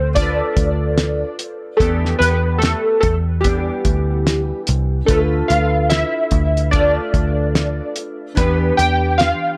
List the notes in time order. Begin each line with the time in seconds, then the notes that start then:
Already playing: D2 A3 F4 A4 C5
0.13 A3 F4 D5, kick, closed hi-hat
0.19 A4 B4
0.57 D2, kick, closed hi-hat
0.98 snare, closed hi-hat
1.39 closed hi-hat
1.77 E2 E3 B3 A4, kick, closed hi-hat
1.81 D4 G4
2.05 snare
2.19 E2 D4 G4 B4, closed hi-hat
2.23 B3
2.58 A4, closed hi-hat
2.64 snare
3.00 E2 A4, kick, closed hi-hat
3.41 E3 B3 G4, closed hi-hat
3.45 D4 G4, kick
3.85 D2, kick, closed hi-hat
4.27 snare, closed hi-hat
4.67 C2, closed hi-hat
5.05 D2 D3 A3 D4 F4 A4, kick, closed hi-hat
5.10 F4 A4 B4
5.48 D2 F4 A4 B4 F5, closed hi-hat
5.53 A3
5.90 E5, snare, closed hi-hat
6.31 D2, kick, closed hi-hat
6.57 closed hi-hat
6.71 A3 F4 D5, kick, closed hi-hat
6.77 A4 B4
7.14 D2, kick, closed hi-hat
7.55 snare, closed hi-hat
7.96 closed hi-hat
8.35 E2 E3 B3 D4 G4 B4, kick, closed hi-hat
8.40 B4
8.77 E2 D4 G4 B4 G5, closed hi-hat
9.18 F5, snare, closed hi-hat